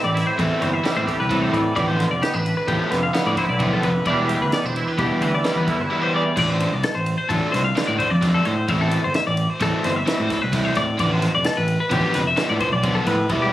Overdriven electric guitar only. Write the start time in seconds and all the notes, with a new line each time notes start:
0.39 E3 A3 C4 E4
0.84 E3 A3 C4 E4
1.30 E3 A3 C4 E4
1.76 D3 F3 B3 F4
2.68 D3 F3 B3 F4
3.13 D3 F3 B3 F4
3.59 D3 F3 B3 F4
4.06 E3 G3 B3 E4
4.98 E3 G3 B3 E4
5.45 E3 G3 B3 E4
5.90 E3 G3 B3 E4
6.36 D3 A3 D4 F4
7.29 D3 A3 D4 F4
7.76 D3 A3 D4 F4
8.22 D3 A3 D4 F4
8.68 E3 A3 C4 E4
9.61 E3 A3 C4 E4
10.07 E3 A3 C4 E4
10.53 E3 A3 C4 E4
10.98 D3 F3 B3 F4
11.90 D3 F3 B3 F4
12.37 D3 F3 B3 F4
12.83 D3 F3 B3 F4
13.30 E3 G3 B3 E4